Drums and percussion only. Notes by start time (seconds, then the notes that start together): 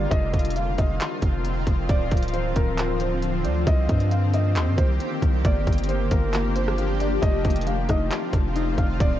0.11 kick, closed hi-hat
0.34 kick, closed hi-hat
0.39 closed hi-hat
0.45 closed hi-hat
0.50 closed hi-hat
0.56 closed hi-hat
0.78 kick, closed hi-hat
1.00 clap, closed hi-hat
1.22 kick, closed hi-hat
1.45 closed hi-hat
1.67 kick, closed hi-hat
1.89 kick, closed hi-hat
2.11 kick, closed hi-hat
2.17 closed hi-hat
2.22 closed hi-hat
2.28 closed hi-hat
2.33 closed hi-hat
2.56 kick, closed hi-hat
2.78 clap, closed hi-hat
3.00 closed hi-hat
3.22 closed hi-hat
3.45 closed hi-hat
3.67 kick, closed hi-hat
3.89 kick, closed hi-hat
4.00 closed hi-hat
4.11 closed hi-hat
4.34 closed hi-hat
4.56 clap, closed hi-hat
4.78 kick, closed hi-hat
5.00 closed hi-hat
5.22 kick, closed hi-hat
5.45 kick, closed hi-hat
5.67 kick, closed hi-hat
5.73 closed hi-hat
5.78 closed hi-hat
5.84 closed hi-hat
5.89 closed hi-hat
6.11 kick, closed hi-hat
6.34 clap, closed hi-hat
6.56 closed hi-hat
6.68 cross-stick
6.78 closed hi-hat
7.00 closed hi-hat
7.22 kick, closed hi-hat
7.45 kick, closed hi-hat
7.50 closed hi-hat
7.56 closed hi-hat
7.61 closed hi-hat
7.67 closed hi-hat
7.89 kick, cross-stick, closed hi-hat
8.11 clap, closed hi-hat
8.33 kick, closed hi-hat
8.56 closed hi-hat
8.78 kick, closed hi-hat
9.00 kick, closed hi-hat